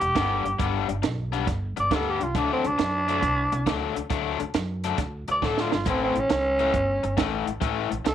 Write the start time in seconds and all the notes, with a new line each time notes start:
Already playing: G4
0.01 E1, muted overdriven electric guitar stroke, closed hi-hat
0.15 G1 G2 G3 B3 D4, kick, snare, closed hi-hat
0.45 G1, muted overdriven electric guitar stroke, closed hi-hat
0.59 G1 G2 G3 B3 D4, kick, closed hi-hat
0.89 G1, muted overdriven electric guitar stroke, closed hi-hat
1.02 B1, muted overdriven electric guitar stroke, snare, closed hi-hat
1.32 G2 G3 B3 D4, closed hi-hat
1.47 G1, muted overdriven electric guitar stroke, kick, snare, closed hi-hat
1.77 G1 D5, muted overdriven electric guitar stroke, closed hi-hat
1.91 D2 G2 G3 B3 D4 A4, kick, snare, closed hi-hat
2.10 G4
2.20 C2 F4, muted overdriven electric guitar stroke, closed hi-hat
2.35 D2 D3 F#3 A3 D4, kick, closed hi-hat
2.53 C4
2.64 D2 D4, muted overdriven electric guitar stroke, closed hi-hat
2.78 F#2, muted overdriven electric guitar stroke, snare, closed hi-hat
3.08 D3 F#3 A3 D4, closed hi-hat
3.23 C2, muted overdriven electric guitar stroke, kick, closed hi-hat
3.52 C2, muted overdriven electric guitar stroke, closed hi-hat
3.66 D2 D3 F#3 A3 D4, kick, snare, closed hi-hat
3.96 D2, muted overdriven electric guitar stroke, closed hi-hat
4.10 D2 D3 F#3 A3 D4, kick, closed hi-hat
4.40 D2, muted overdriven electric guitar stroke, closed hi-hat
4.54 F#2, muted overdriven electric guitar stroke, snare, closed hi-hat
4.84 D3 F#3 A3 D4, closed hi-hat
4.98 D2, muted overdriven electric guitar stroke, kick, snare, closed hi-hat
5.28 D2 D5, muted overdriven electric guitar stroke, closed hi-hat
5.42 A2 D3 F#3 A3 D4 A4, kick, snare
5.57 F4, snare
5.72 G1 F4, muted overdriven electric guitar stroke, snare
5.86 A1 A2 E3 A3 C4 C#4, kick, closed hi-hat
6.04 C4
6.15 A1, muted overdriven electric guitar stroke, closed hi-hat
6.20 C#4
6.30 C#2, muted overdriven electric guitar stroke, snare, closed hi-hat
6.59 A2 E3 A3 C#4, closed hi-hat
6.74 G1, muted overdriven electric guitar stroke, kick, closed hi-hat
7.03 G1, muted overdriven electric guitar stroke, closed hi-hat
7.17 A1 A2 E3 A3 C#4, kick, snare, closed hi-hat
7.47 A1, muted overdriven electric guitar stroke, closed hi-hat
7.61 A1 A2 E3 A3 C#4, kick, closed hi-hat
7.91 A1, muted overdriven electric guitar stroke, closed hi-hat
8.05 C#2 A4, muted overdriven electric guitar stroke, snare, closed hi-hat